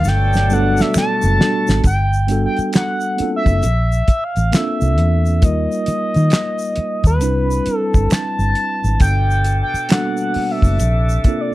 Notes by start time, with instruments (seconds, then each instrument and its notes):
0.04 fingered electric bass G1, tonewheel organ B2 A3 A4, horn section F#3 B3 D4, analog synth lead G5, snare, shaker
0.33 snare, shaker
0.49 tine electric piano G3 B3 D4 F#4, shaker
0.53 tine electric piano A4, analog synth lead F#5
0.77 analog synth lead E5, snare, shaker
0.94 analog synth lead A5, finger snap, muted fingered electric bass stroke, snare, shaker
1.22 fingered electric bass F#1, shaker
1.38 tine electric piano G3 B3 D4 F#4, snare
1.43 tine electric piano A4
1.67 fingered electric bass G#1, snare, shaker
1.84 fingered electric bass G1, analog synth lead G5, kick, closed hi-hat, shaker
2.13 shaker
2.27 tine electric piano G3 B3 D4 F#4, closed hi-hat, shaker
2.32 tine electric piano A4
2.46 analog synth lead G5
2.57 muted fingered electric bass stroke, closed hi-hat, shaker
2.73 analog synth lead F#5, finger snap, snare, clap, closed hi-hat, shaker
3.01 shaker
3.17 tine electric piano A#3 C4 D4 F4, muted fingered electric bass stroke, closed hi-hat
3.22 tine electric piano A4
3.36 analog synth lead E5
3.46 fingered electric bass F#1, kick, closed hi-hat, shaker
3.63 fingered electric bass A#1, closed hi-hat, shaker
3.92 shaker
4.08 muted fingered electric bass stroke, kick, closed hi-hat, shaker
4.24 analog synth lead F5
4.36 fingered electric bass A1, closed hi-hat, shaker
4.52 tine electric piano A#3 C4 D4 F4, analog synth lead E5, finger snap, snare, clap, closed hi-hat, shaker
4.56 tine electric piano A4
4.81 fingered electric bass C2, shaker
4.98 fingered electric bass E2, closed hi-hat
5.26 shaker
5.42 fingered electric bass D#2, tine electric piano G3 A#3 D#4 F4, analog synth lead D#5, kick, closed hi-hat, shaker
5.46 tine electric piano A#4
5.72 shaker
5.86 muted fingered electric bass stroke, closed hi-hat, shaker
6.14 fingered electric bass D#3, closed hi-hat, shaker
6.30 finger snap, snare, clap, closed hi-hat, shaker
6.59 shaker
6.76 muted fingered electric bass stroke, closed hi-hat
7.04 fingered electric bass D#2, analog synth lead B4, kick, closed hi-hat, shaker
7.20 fingered electric bass C2, tine electric piano G3 C4 D4 E4, closed hi-hat, shaker
7.24 tine electric piano B4
7.51 shaker
7.66 muted fingered electric bass stroke, closed hi-hat, shaker
7.77 analog synth lead A4
7.94 fingered electric bass G1, kick, shaker
8.10 analog synth lead A5, finger snap, muted fingered electric bass stroke, snare, clap, closed hi-hat, shaker
8.39 fingered electric bass G1, shaker
8.55 closed hi-hat
8.84 fingered electric bass G#1, shaker
9.00 fingered electric bass G1, tonewheel organ B2 D4 A4, analog synth lead G5, kick, closed hi-hat, shaker
9.31 shaker
9.44 closed hi-hat, shaker
9.62 analog synth lead G5
9.74 muted fingered electric bass stroke, shaker
9.89 tine electric piano G3 A#3 D4 F#4, analog synth lead F#5, finger snap, snare, clap, closed hi-hat, shaker
9.94 tine electric piano B3 A4
10.17 shaker
10.34 muted fingered electric bass stroke, open hi-hat
10.51 analog synth lead E5
10.62 fingered electric bass F#1, kick, shaker
10.80 fingered electric bass A#1, tonewheel organ C3 D4, closed hi-hat, shaker
11.09 shaker
11.24 tine electric piano A#3 C4 D4 F4, muted fingered electric bass stroke, kick, closed hi-hat, shaker
11.28 tine electric piano A4
11.41 analog synth lead D5